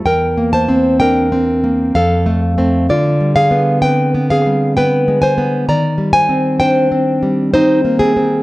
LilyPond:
\new Staff \with { instrumentName = "Nylon-string guitar" } { \time 3/4 \key c \major \tempo 4 = 64 << { <bes' g''>8 <c'' a''>8 <bes' g''>4 <a' f''>8 r8 | \key c \minor <f' d''>8 <aes' f''>8 <b' g''>8 <aes' f''>8 <b' g''>8 <c'' aes''>8 | <d'' bes''>8 <c'' aes''>8 <c'' g''>4 <ees' c''>8 <c' aes'>8 | } \\ { \tuplet 3/2 { e,8 bes8 c'8 d'8 c'8 bes8 f,8 a8 <a c'>8 } | \tuplet 3/2 { d8 g8 b8 c'8 b8 g8 b8 aes8 b8 } | \tuplet 3/2 { ees8 g8 c'8 d'8 c'8 g8 c'8 bes8 c'8 } | } >> }